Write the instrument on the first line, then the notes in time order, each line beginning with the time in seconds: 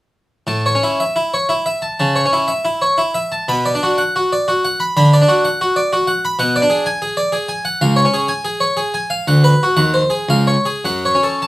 harpsichord
0.47 A2 A5
0.66 C#5
0.75 C#4
0.83 E4
1.00 E5
1.16 E4
1.34 C#5
1.49 E4
1.66 E5
1.82 A5
1.99 C#3 A5
2.16 C#5
2.26 C#4
2.33 E4
2.48 E5
2.65 E4
2.82 C#5
2.98 E4
3.15 E5
3.32 A5
3.48 B2 B5
3.66 D5
3.75 D4
3.83 F#4
3.98 F#5
4.16 F#4
4.33 D5
4.48 F#4
4.65 F#5
4.80 B5
4.97 D3 B5
5.13 D5
5.22 D4
5.28 F#4
5.45 F#5
5.61 F#4
5.76 D5
5.93 F#4
6.07 F#5
6.25 B5
6.39 B2 F#5
6.56 D5
6.62 D4
6.70 G#4
6.86 G#5
7.02 G#4
7.17 D5
7.32 G#4
7.49 G#5
7.65 F#5
7.81 C#2 F5
7.96 C#5
8.05 C#4
8.14 G#4
8.28 G#5
8.45 G#4
8.60 C#5
8.77 G#4
8.94 G#5
9.10 F5
9.28 D2 F#5
9.44 B4
9.63 F#4
9.77 D#2 F#5
9.94 C5
10.10 G#4
10.29 C#2 F5
10.47 C#5
10.66 G#4
10.85 F#2 F#5
11.05 C#5
11.15 C#4
11.23 A4
11.42 A5